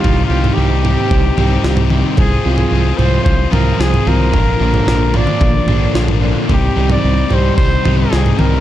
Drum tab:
SD |------------o---|------------o---|----o-------o---|------------o---|
T2 |----------o---o-|----------o---o-|-------oo-o-----|----------o---o-|
FT |o--o--o---o--o--|o--o--o---o--o--|o--o--o---o--o--|o--o--o---o--o--|
BD |o-------o-------|o-------o-------|o-------o-------|o-------o-------|